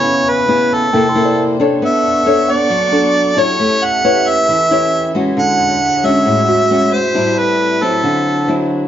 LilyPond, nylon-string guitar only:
\new Staff \with { instrumentName = "Nylon-string guitar" } { \time 4/4 \key a \major \tempo 4 = 135 << { <b e' gis'>4 <b e' gis'>4 <bes e' a'>8 <bes e' a'>4 <d' a' cis''>8~ | <d' a' cis''>4 <d' a' cis''>4 r8 <d' a'>4 <e' g' cis''>8~ | <e' g' cis''>4 <e' g' cis''>4. <e' g' cis''>4 <gis cis' fis'>8~ | <gis cis' fis'>4 r8 <gis cis' fis'>4. <gis cis' fis'>8 r8 |
<g c' e'>4. <fis c' e'>4. <fis c' e'>4 | } \\ { cis2 c2 | b2 fis2 | a2 e2 | d2 a,2 |
a,2 d2 | } >> }